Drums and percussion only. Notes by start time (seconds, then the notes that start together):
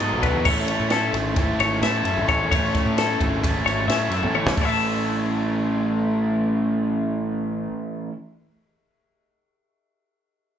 0.00 snare, ride
0.23 kick, ride
0.45 kick, crash
0.68 ride
0.90 snare, ride
1.14 snare, ride
1.36 kick, snare, ride
1.60 snare, ride
1.83 snare, ride
2.05 ride
2.28 kick, snare, ride
2.52 kick, ride
2.75 kick, snare, ride
2.98 snare, ride
3.21 kick, ride
3.44 kick, snare, ride
3.67 snare, ride
3.89 snare, ride
4.11 snare, ride
4.23 high tom
4.35 mid tom
4.47 snare
4.57 kick, open hi-hat